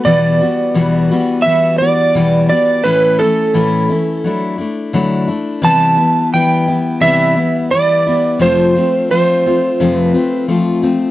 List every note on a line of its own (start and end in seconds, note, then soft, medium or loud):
0.05 0.40 E2 medium
0.05 0.40 B2 medium
0.05 0.41 E3 medium
0.05 0.40 G3 medium
0.05 0.41 B3 medium
0.05 0.40 F#4 medium
0.05 1.49 D5 medium
0.41 0.74 E3 soft
0.41 0.74 G3 soft
0.41 0.74 B3 medium
0.41 0.75 F#4 medium
0.74 1.10 E2 medium
0.74 1.10 B2 medium
0.74 1.10 E3 medium
0.74 1.10 G3 medium
0.74 1.10 B3 medium
0.74 1.09 F#4 medium
1.11 1.44 E3 medium
1.11 1.46 G3 medium
1.11 1.46 B3 medium
1.11 1.45 F#4 medium
1.42 1.80 E3 medium
1.42 1.76 E5 loud
1.47 1.81 G3 medium
1.47 1.80 B3 medium
1.47 1.80 F#4 medium
1.78 2.14 G3 soft
1.78 2.15 B3 soft
1.78 2.15 F#4 soft
1.78 2.48 D5 medium
1.83 2.15 E3 soft
2.15 2.50 E2 medium
2.15 2.49 B2 medium
2.15 2.50 E3 medium
2.15 2.50 G3 medium
2.15 2.50 B3 medium
2.15 2.49 F#4 medium
2.49 2.84 E3 soft
2.49 2.85 G3 soft
2.49 2.84 B3 soft
2.49 2.85 F#4 soft
2.49 2.85 D5 medium
2.84 3.19 A2 medium
2.84 3.19 E3 medium
2.84 3.19 A3 medium
2.84 3.19 C#4 medium
2.84 3.18 E4 medium
2.84 3.20 B4 medium
3.19 3.53 A3 soft
3.19 3.54 C#4 medium
3.19 3.54 E4 medium
3.19 4.54 A4 medium
3.54 3.88 A2 medium
3.54 3.89 E3 medium
3.54 3.89 A3 medium
3.54 3.89 C#4 medium
3.54 3.88 E4 medium
3.89 4.24 A3 soft
3.89 4.24 C#4 soft
3.89 4.24 E4 medium
4.24 4.58 F#3 medium
4.24 4.59 A3 medium
4.24 4.58 D4 medium
4.24 4.57 E4 medium
4.58 4.93 A3 soft
4.58 4.93 D4 soft
4.58 4.93 E4 soft
4.93 5.28 D3 medium
4.93 5.28 F#3 medium
4.93 5.28 A3 medium
4.93 5.27 D4 medium
4.93 5.26 E4 medium
5.27 5.62 A3 soft
5.27 5.63 D4 medium
5.27 5.62 E4 medium
5.62 5.97 C3 medium
5.62 5.97 E3 medium
5.62 5.97 G3 medium
5.62 5.97 B3 medium
5.62 5.95 E4 medium
5.62 6.29 A5 loud
5.97 6.32 G3 soft
5.97 6.32 B3 soft
5.97 6.31 E4 medium
6.33 6.67 E3 medium
6.33 6.67 G3 medium
6.33 6.68 B3 medium
6.33 6.67 E4 medium
6.33 7.04 G5 loud
6.68 7.00 G3 soft
6.68 7.01 B3 soft
6.68 7.02 E4 medium
7.01 7.36 C3 medium
7.01 7.36 E3 medium
7.01 7.36 G3 medium
7.01 7.35 B3 medium
7.01 7.35 E4 medium
7.01 7.71 E5 loud
7.36 7.71 G3 soft
7.36 7.71 B3 medium
7.36 7.71 E4 medium
7.71 8.05 E3 medium
7.71 8.06 G3 medium
7.71 8.06 B3 medium
7.71 8.05 E4 medium
7.71 8.41 D5 loud
8.06 8.40 G3 soft
8.06 8.41 B3 soft
8.06 8.40 E4 soft
8.39 8.74 F2 medium
8.39 8.75 C3 medium
8.39 8.74 F3 medium
8.39 8.75 A3 medium
8.39 8.75 C4 medium
8.39 8.74 F4 medium
8.39 9.10 C5 medium
8.75 9.10 F3 soft
8.75 9.09 A3 soft
8.75 9.10 C4 medium
8.75 9.09 F4 medium
9.11 9.45 F3 medium
9.11 9.45 A3 medium
9.11 9.45 C4 medium
9.11 9.45 F4 medium
9.11 9.98 C5 medium
9.46 9.79 F3 soft
9.46 9.79 A3 medium
9.46 9.80 C4 medium
9.46 9.79 F4 medium
9.80 10.14 F2 medium
9.80 10.14 C3 medium
9.80 10.14 F3 medium
9.80 10.14 A3 medium
9.80 10.13 C4 medium
9.80 10.13 F4 medium
9.98 10.45 B4 medium
10.14 10.47 F3 soft
10.14 10.47 A3 soft
10.14 10.47 C4 medium
10.14 10.48 F4 medium
10.48 10.82 F3 medium
10.48 10.82 A3 medium
10.48 10.82 C4 medium
10.48 10.81 F4 medium
10.82 11.11 F3 soft
10.82 11.11 A3 medium
10.82 11.11 C4 medium
10.82 11.11 F4 medium